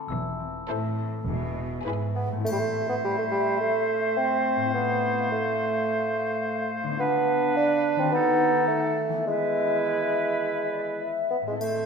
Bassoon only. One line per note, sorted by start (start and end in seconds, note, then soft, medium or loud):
2.16 2.29 B3 soft
2.44 2.54 A3 medium
2.52 2.60 G3 medium
2.59 2.88 A3 medium
2.89 2.96 B3 medium
3.04 3.18 G3 medium
3.18 3.25 A3 medium
3.31 3.59 G3 medium
3.60 4.19 A3 medium
4.17 4.74 C4 medium
4.74 5.30 B3 medium
5.32 6.70 A3 medium
7.00 7.52 B3 medium
7.57 8.01 D4 medium
8.00 8.11 C4 medium
8.12 8.67 B3 medium
8.67 9.25 A3 medium
9.27 10.98 G#3 medium
11.31 11.37 B3 medium
11.48 11.54 G#3 soft
11.60 11.86 A3 medium